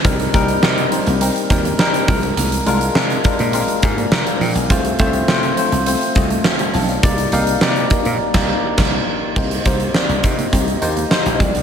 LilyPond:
<<
  \new Staff \with { instrumentName = "Ocarina" } { \time 4/4 \key c \minor \tempo 4 = 103 r1 | r1 | r1 | r1 |
ees''8 c''8 d''8 ees''4 ees''4 d''8 | }
  \new Staff \with { instrumentName = "Tine electric piano" } { \time 4/4 \key c \minor << { r1 | r4. d''8 f''8 <aes' c'' aes''>16 <bes' d'' bes''>16 bes''16 <d'' f''>16 g''16 <f'' aes''>16~ | <f'' aes''>16 r2 r8. <ees'' g''>8 <f'' a''>16 <d'' f''>16~ | <d'' f''>16 r2. r8. |
r1 | } \\ { <g c' ees' bes'>8 <g c' ees' bes'>8 <g c' ees' bes'>8 <g c' ees' c''>8 <g c' ees' bes'>8 <g c' ees' bes'>8 <g c' ees' bes'>8 <aes d' f' bes'>8~ | <aes d' f' bes'>16 r16 <aes d' f' bes'>8 <aes d' f' bes'>8 <aes d' f' bes'>8 <aes d' f' bes'>8 r4. | <a c' f' c''>8 <a c' f' c''>8 <a c' f' c''>8 <a c' f' c''>8 <a c' f' c''>8 <a c' f' ees''>8 r4 | <bes ees' g' d''>8 <bes ees' g' f''>8 <bes ees' g' d''>8 <bes ees' g' bes'>8 r16 <bes ees' g' d''>8 r4 r16 |
<bes ees' g' c''>8 <bes ees' g' c''>8 <bes ees' g' c''>8 <bes ees' g' c''>8 <bes ees' g' c''>8 <bes ees' g' c''>8 <bes ees' g' c''>8 <aes d' f'>8 | } >> }
  \new Staff \with { instrumentName = "Clean electric guitar" } { \time 4/4 \key c \minor c'16 r16 bes16 r16 c'16 r8 bes16 c'16 r8 bes16 r16 g16 f16 r16 | bes16 r16 aes16 r16 c'16 r8 bes16 c'16 r8 bes16 r16 g16 f16 r16 | f'16 r16 a16 r16 c'16 r8 a16 c'16 r8 a16 r16 g16 f16 r16 | ees'16 r16 bes16 r16 c'16 r8 bes16 r2 |
c'16 r16 bes16 r16 c'16 r8 bes16 c'16 r8 bes16 r16 g16 f16 r16 | }
  \new Staff \with { instrumentName = "Slap bass" } { \clef bass \time 4/4 \key c \minor c,8 c,8 c8 r16 c,8 r16 ees,8 r8 c,8 | c,8 c,8 c8 r16 bes,8 r16 aes,8 c16 r16 bes,16 b,,16 | c,8 c,8 c8 r16 c,8 r16 c,8 r8 b,,8 | c,8 c,8 c8 r16 bes,16 r16 c,8 r16 c,8 r8 |
c,8 c,8 r16 c,16 c8 c,8 ees,8 r16 bes,,16 c,16 b,,16 | }
  \new DrumStaff \with { instrumentName = "Drums" } \drummode { \time 4/4 <hh bd>16 hh16 <hh bd>16 hh16 sn16 hh16 hh16 hh16 hh16 hh16 <hh bd>16 hh16 sn16 hh16 <hho bd>16 hh16 | hh16 hh16 hh16 hh16 sn16 hh16 <hh bd>16 hh16 hh16 hh16 <hh bd>16 hh16 sn16 hh16 hho16 hh16 | <hh bd>16 hh16 <hh bd>16 hh16 sn16 hh16 hh16 hh16 hh16 hh16 <hh bd>16 hh16 sn16 hh16 hho16 hh16 | <hh bd>16 hh16 hh16 hh16 sn16 hh16 <hh bd>16 hh16 r16 <cymc bd sn>8. <cymc bd sn>4 |
<cymc bd>16 hh16 <hh bd>16 hh16 sn16 hh16 <hh bd>16 hh16 <hh bd>16 hh16 hh16 hh16 sn16 hh16 <hh bd>16 hh16 | }
>>